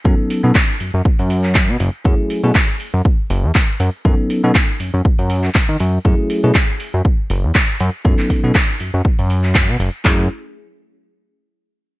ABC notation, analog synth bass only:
X:1
M:4/4
L:1/16
Q:"Swing 16ths" 1/4=120
K:Bmix
V:1 name="Analog synth bass" clef=bass
F,, z2 B,, z2 F,, F,, z F,,4 B,, F,,, z | F,, z2 B,, z3 F,, z2 F,,, E,, z2 F,, z | F,, z2 B,, z2 F,, F,, z F,,3 z D, F,, z | F,, z2 B,, z3 F,, z2 F,,, E,, z2 F,, z |
F,, z2 B,, z2 F,, F,, z F,,4 B,, F,,, z | F,,2 z12 z2 |]